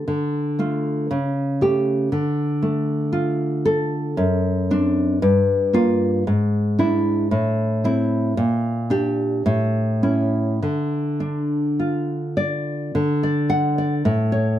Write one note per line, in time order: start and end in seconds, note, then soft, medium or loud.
0.08 1.08 D3 medium
0.59 1.06 A3 soft
0.59 1.07 F4 medium
1.11 2.09 C#3 medium
1.61 2.08 A3 soft
1.61 2.08 G4 medium
2.12 4.15 D3 medium
2.62 4.19 A3 soft
3.13 4.18 F4 medium
3.65 4.19 A4 medium
4.17 5.19 F#2 medium
4.71 5.19 C4 soft
4.71 5.19 D4 medium
5.22 6.24 G2 medium
5.73 6.22 A#3 medium
5.73 6.23 F4 medium
6.27 7.28 G#2 medium
6.79 7.27 D4 medium
6.79 7.27 E4 medium
7.31 8.34 A2 medium
7.84 8.33 C4 soft
7.84 8.33 E4 medium
8.37 9.44 A#2 medium
8.90 9.42 D4 soft
8.90 9.42 G4 medium
9.46 10.59 A2 medium
10.03 10.59 C#4 soft
10.03 10.59 E4 medium
10.62 12.91 D3 medium
11.20 12.94 D4 soft
11.79 12.95 F4 soft
12.37 12.94 D5 medium
12.95 14.02 D3 medium
13.23 13.77 D5 medium
13.50 13.94 F#5 medium
13.78 14.06 D5 medium
14.05 14.59 A2 medium
14.32 14.59 C#5 medium